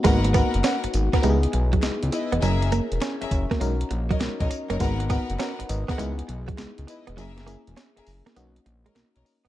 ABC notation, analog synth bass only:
X:1
M:4/4
L:1/16
Q:"Swing 16ths" 1/4=101
K:C#dor
V:1 name="Analog synth bass" clef=bass
G,,,3 F,,, z G,,, G,,, z C,,2 B,,,2 C,, C,, z E,,, | F,,,3 E,,, z F,,, F,,, z B,,,2 A,,,2 B,,, B,,, z F,,, | G,,,3 F,,, z G,,, G,,, z C,,2 B,,,2 C,, C,, z E,,, | F,,,3 E,,, z F,,, F,,, z B,,,2 A,,,2 B,,, B,,, z2 |]